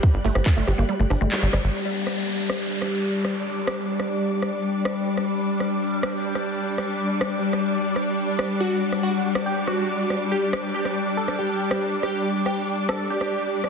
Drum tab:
HH |xxo-xxoxxxoxxxox|----------------|----------------|----------------|
CP |----x-------x---|----------------|----------------|----------------|
SD |---r--r---r---r-|---r---r--r---r-|--r--r---r---r--|r---r---r--r---r|
BD |o---o-----------|----------------|----------------|----------------|

HH |----------------|----------------|----------------|----------------|
CP |----------------|----------------|----------------|----------------|
SD |---r--r---r---r-|---r---r--r---r-|--r--r---r---r--|r---r---r--r---r|
BD |----------------|----------------|----------------|----------------|